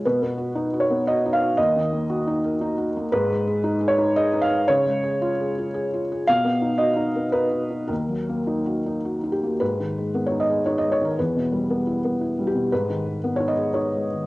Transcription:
\new Staff \with { instrumentName = "Felt piano" } { \time 3/4 \key dis \minor \tempo 4 = 115 << { b'4. cis''8 dis''8 eis''8 | dis''2~ dis''8 r8 | b'4. cis''8 dis''8 eis''8 | cis''2~ cis''8 r8 |
eis''4 dis''4 b'4 | ais'2~ ais'8 g'8 | \key gis \minor b'4~ b'16 cis''16 dis''8 cis''16 dis''16 cis''16 ais'16 | b'2 r8 g'8 |
b'4~ b'16 cis''16 dis''8 cis''4 | } \\ { \tuplet 3/2 { b,8 b8 fis'8 dis'8 fis'8 b8 fis'8 dis'8 fis'8 } | \tuplet 3/2 { dis,8 dis8 ais8 fis'8 dis'8 ais'8 dis'8 fis'8 ais8 } | \tuplet 3/2 { gis,8 gis8 gis'8 dis'8 gis'8 dis'8 gis'8 dis'8 gis'8 } | \tuplet 3/2 { cis8 gis8 gis'8 eis'8 gis'8 eis'8 gis'8 eis'8 gis'8 } |
\tuplet 3/2 { b,8 b8 dis'8 fis'8 dis'8 b8 dis'8 fis'8 dis'8 } | \tuplet 3/2 { dis,8 fis8 ais8 dis'8 fis'8 dis'8 fis'8 dis'8 ais8 } | \tuplet 3/2 { gis,8 dis8 gis8 b8 dis'8 gis'8 dis'8 gis8 dis8 } | \tuplet 3/2 { e,8 b,8 g8 b8 e'8 b8 e'8 g8 b,8 } |
\tuplet 3/2 { gis,8 dis8 gis8 b8 dis'8 gis'8 dis'8 gis8 dis8 } | } >> }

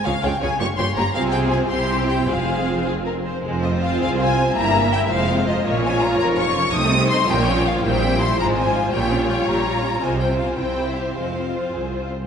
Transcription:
<<
  \new Staff \with { instrumentName = "Violin section" } { \time 6/8 \key f \minor \tempo 4. = 109 f''8 g''8 aes''8 des'''8 c'''8 bes''8 | f''8 g''8 aes''8 c'''4 g''8 | f''4. r4. | r8 ees''8 f''8 f''8 aes''4 |
bes''4 g''8 f''4 ees''8 | r8 aes''8 bes''8 bes''8 des'''4 | ees'''4 c'''8 g''4 f''8 | g''4 c'''8 bes''8 aes''4 |
g''4 g''8 bes''4. | aes''8 g''8 f''16 aes''16 g''4 e''8 | f''4. r4. | }
  \new Staff \with { instrumentName = "Violin section" } { \time 6/8 \key f \minor << { des''8 des''8 des''8 des''8 des''8 des''8 | c''4. c''4. | c''4. aes'8 bes'8 c''8 | c''2. |
e''4. c''4. | des''2. | c''4. des''4. | c''2. |
des''2. | c''2.~ | c''2~ c''8 r8 | } \\ { aes'8 aes'8 aes'8 g'8 g'8 g'8 | aes'4. g'4. | aes'4. r4. | aes8 c'8 f'8 aes'8 f'8 c'8 |
g8 bes8 e'8 aes8 c'8 f'8 | bes8 des'8 f'8 bes'8 f'8 des'8 | a8 c'8 ees'8 bes8 des'8 f'8 | bes8 c'8 e'8 aes8 c'8 f'8 |
bes8 des'8 f'8 g'8 f'8 des'8 | aes8 c'8 f'8 c'8 e'8 g'8 | aes8 c'8 f'8 aes'8 f'8 c'8 | } >> }
  \new Staff \with { instrumentName = "Viola section" } { \time 6/8 \key f \minor << { f'8 f'8 f'8 f'8 f'8 f'8 | f'4. e'4. | f'2~ f'8 r8 | f'2. |
e'4. f'4.~ | f'2. | ees'4. f'4. | e'4. f'4.~ |
f'2.~ | f'4. e'4. | f'2~ f'8 r8 | } \\ { aes8 aes8 aes8 bes8 bes8 bes8 | c'4. c'4. | c'2~ c'8 r8 | c'2. |
bes4. aes4. | f2. | a4. f4. | g4. f4. |
g2. | c'2.~ | c'2~ c'8 r8 | } >> }
  \new Staff \with { instrumentName = "Cello section" } { \clef bass \time 6/8 \key f \minor des8 des8 des8 g,8 g,8 g,8 | c4. c4. | f,2~ f,8 r8 | f,4. c,4. |
g,4. f,4. | bes,4. f,4. | c4. bes,4. | bes,4. aes,4. |
bes,4. bes,4. | c4. c4. | f,4. c,4. | }
  \new Staff \with { instrumentName = "Double bass section" } { \clef bass \time 6/8 \key f \minor des,8 des,8 des,8 g,,8 g,,8 g,,8 | c,4. c,4. | f,,2~ f,,8 r8 | f,,4. c,4. |
g,,4. f,,4. | bes,,4. f,,4. | c,4. bes,,4. | bes,,4. aes,,4. |
bes,,4. bes,,4. | c,4. c,4. | f,,4. c,4. | }
>>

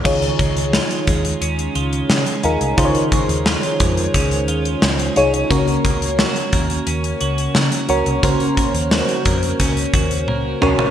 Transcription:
<<
  \new Staff \with { instrumentName = "FM electric piano" } { \time 4/4 \key des \major \tempo 4 = 88 <des ees' f' aes' des''>4. r2 <ees' f' aes' bes'>8 | <des ees' f' aes' c'' des''>4. r2 <ees' f' aes' des''>8 | <des des' ges' bes' des''>4. r2 <des' ges' bes' des''>8 | <des des' ges' bes' c''>4. r2 <des' ges' bes' des''>8 | }
  \new Staff \with { instrumentName = "Clean electric guitar" } { \time 4/4 \key des \major ees8 aes8 f'8 aes8 des'8 f'8 aes8 des'8 | ees8 aes8 f'8 aes8 des'8 f'8 aes8 des'8 | bes8 bes8 ges'8 bes8 des'8 ges'8 bes8 des'8 | bes8 bes8 ges'8 bes8 des'8 ges'8 bes8 des'8 | }
  \new Staff \with { instrumentName = "Fingered electric bass" } { \clef bass \time 4/4 \key des \major des,8 des,8. r16 ees,8 ees,8 des,8 des16 r16 ees,16 c,16 | des,16 r8 ees,8 r16 f,8 des,8 ees,8 des,8 c,8 | des,8 des,8. r16 ees,8 ees,8 des,8 des16 r16 des,16 c,16 | des,16 r8 ees,8 r16 f,8 des,8 ees,8 des,8 c,8 | }
  \new DrumStaff \with { instrumentName = "Drums" } \drummode { \time 4/4 <cymc bd>16 hh16 <hh bd>16 hh16 sn16 hh16 <hh bd>16 hh16 hh16 hh16 hh16 hh16 sn16 hh16 hh16 hh16 | <hh bd>16 hh16 <hh bd>16 hh16 sn16 hh16 <hh bd>16 hh16 <hh bd>16 hh16 hh16 hh16 sn16 hh16 hh16 hh16 | <hh bd>16 hh16 <hh bd>16 hh16 sn16 hh16 <hh bd>16 hh16 hh16 hh16 hh16 hh16 sn16 hh16 hh16 hh16 | <hh bd>16 hh16 <hh bd>16 hh16 sn16 hh16 <hh bd>16 hh16 <hh bd>16 hh16 <hh bd>16 hh16 tommh8 toml16 tomfh16 | }
>>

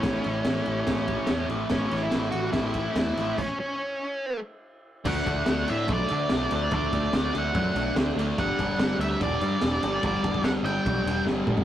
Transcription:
<<
  \new Staff \with { instrumentName = "Lead electric guitar" } { \time 4/4 \key d \major \tempo 4 = 144 cis'2.~ cis'8 r8 | cis'8. e'8. fis'8 e'4 e'4 | cis'8 cis'2 r4. | fis''4. e''8 d''2 |
d''4. fis''4. r4 | fis''4. e''8 d''2 | d''4 fis''8 g''4. r4 | }
  \new Staff \with { instrumentName = "Distorted electric guitar" } { \clef bass \time 4/4 \key d \major <a, e a>4 <a, e a>4 <a, e a>8 <e a>8 <a, e a>8 <e a>8 | <a, e a>4 <a, e a>4 <a, e a>8 <e a>8 <a, e a>8 <e a>8 | r1 | <d a d'>8 <d a d'>8 <d a d'>8 <d a d'>8 <d a d'>8 <d a d'>8 <d a d'>8 <d a d'>8 |
<d a d'>8 <d a d'>8 <d a d'>8 <d a d'>8 <d a d'>8 <d a d'>8 <d a d'>8 <d a d'>8 | <g, d g>8 <g, d g>8 <g, d g>8 <g, d g>8 <g, d g>8 <g, d g>8 <g, d g>8 <g, d g>8 | <g, d g>8 <g, d g>8 <g, d g>8 <g, d g>8 <g, d g>8 <g, d g>8 <g, d g>8 <g, d g>8 | }
  \new Staff \with { instrumentName = "Picked electric bass" } { \clef bass \time 4/4 \key d \major a,,8 a,,8 a,,8 a,,8 a,,4 e,8 a,,8 | a,,8 a,,8 a,,8 a,,8 a,,4 e,8 a,,8 | r1 | d,8 d,8 d,8 a,8 b,,8 d8 b,,8 d,8 |
d,8 d,8 d,8 d,8 fis,8 b,,8 d,8 d,8 | g,,8 g,,8 g,,8 d,8 e,,8 g,8 e,,8 g,,8 | g,,8 g,,8 g,,8 g,,8 b,,8 e,,8 g,,8 gis,,8 | }
  \new DrumStaff \with { instrumentName = "Drums" } \drummode { \time 4/4 <bd cymr sn>8 cymr8 <cymr sn>8 cymr8 <bd cymr sn>8 <bd cymr>8 <cymr sn>8 cymr8 | <bd cymr sn>8 cymr8 <cymr sn>8 cymr8 <bd cymr sn>8 <bd cymr>8 <cymr sn>8 cymr8 | <cymc bd>4 r4 r4 r4 | <cymc bd>8 <bd cymr>8 <cymr sn>8 cymr8 <bd cymr>8 cymr8 <cymr sn>8 cymr8 |
<bd cymr>8 <bd cymr>8 <cymr sn>8 cymr8 <bd cymr>8 cymr8 <cymr sn>8 cymr8 | <bd cymr>8 <bd cymr>8 <cymr sn>8 cymr8 <bd cymr>8 cymr8 <cymr sn>8 cymr8 | <bd cymr>8 <bd cymr>16 bd16 <cymr sn>8 cymr8 <bd cymr>8 cymr8 sn8 toml16 tomfh16 | }
>>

